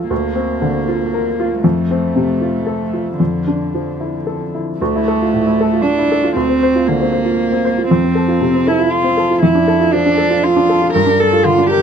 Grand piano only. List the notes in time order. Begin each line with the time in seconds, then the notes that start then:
Already playing: D2 A2 A3 F4 A4
0.10 D2
0.36 C4
0.62 D3
0.88 F4
1.14 A#4
1.40 F4
1.64 F2
1.91 C4
2.16 C3
2.41 F4
2.67 A4
2.93 F4
3.20 F2
3.47 D4
3.75 F3
4.01 E4
4.27 A4
4.55 E4
4.81 D2
4.96 E4
5.08 A4
5.22 F4
5.34 A2
5.47 E4
5.61 A4
5.73 F4
5.98 E4
6.12 A4
6.24 F4
6.36 D2
6.49 C4
6.63 C5
6.75 F4
6.89 D3
7.01 C4
7.12 C5
7.25 F4
7.52 C4
7.65 C5
7.78 F4
7.91 F2
8.04 C4
8.15 A4
8.28 F4
8.41 C3
8.54 C4
8.67 A4
8.79 F4
9.04 C4
9.17 A4
9.30 F4
9.43 F2
9.55 D4
9.68 A4
9.80 F4
9.93 F3
10.06 D4
10.18 A4
10.30 F4
10.56 D4
10.69 A4
10.82 F4
10.95 G2
11.06 D4
11.20 A#4
11.33 F4
11.45 D3
11.58 D4
11.71 A#4